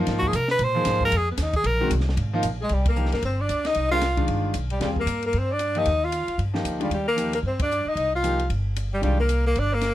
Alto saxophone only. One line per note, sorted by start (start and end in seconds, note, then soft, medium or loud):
2.61 2.73 G#4 medium
2.71 2.86 G4 medium
2.88 3.11 A#4 medium
3.13 3.22 A#4 medium
3.26 3.42 C5 medium
3.41 3.67 D5 medium
3.66 3.92 D#5 medium
3.92 4.26 F5 medium
4.71 4.81 G4 medium
4.84 4.90 G4 medium
4.99 5.23 A#4 medium
5.26 5.39 A#4 medium
5.38 5.53 C5 medium
5.51 5.80 D5 medium
5.78 6.07 D#5 medium
6.05 6.41 F5 medium
6.81 6.91 G4 medium
6.93 7.07 G4 medium
7.08 7.32 A#4 medium
7.34 7.39 A#4 medium
7.47 7.60 C5 medium
7.61 7.89 D5 medium
7.87 8.14 D#5 medium
8.15 8.49 F5 medium
8.93 9.02 G4 medium
9.04 9.18 G4 medium
9.21 9.44 A#4 medium
9.48 9.60 A#4 medium
9.58 9.74 D5 medium
9.72 9.94 A#4 medium